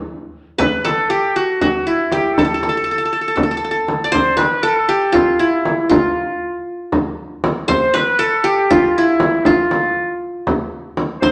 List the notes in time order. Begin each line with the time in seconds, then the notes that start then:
Already playing: E4
0.58 B4, frame drum
0.84 A4, frame drum
1.09 G4
1.36 F#4
1.61 F#4, frame drum
1.86 E4
2.11 G4, frame drum
2.33 A4
2.38 A4, frame drum
2.45 A4
2.54 A4
2.63 A4, frame drum
2.69 A4
2.77 A4
2.84 A4
2.91 A4
2.98 A4
3.05 A4
3.13 A4
3.21 A4
3.28 A4
3.36 A4, frame drum
3.43 A4
3.51 A4
3.57 A4
3.64 A4
3.71 A4
3.88 frame drum
4.04 D5
4.12 C5, frame drum
4.37 B4, frame drum
4.63 A4 A#4
4.78 A4
4.89 G4
5.12 F4, frame drum
5.39 E4
5.65 frame drum
5.89 F4, frame drum
6.92 frame drum
7.44 frame drum
7.68 C5, frame drum
7.94 B4, frame drum
8.19 A4
8.44 G4
8.70 F4, frame drum
8.77 G4
8.83 F4
8.88 F4
8.95 E4
9.20 frame drum
9.45 F4, frame drum
9.71 frame drum
10.47 frame drum
10.97 frame drum
11.21 C5, frame drum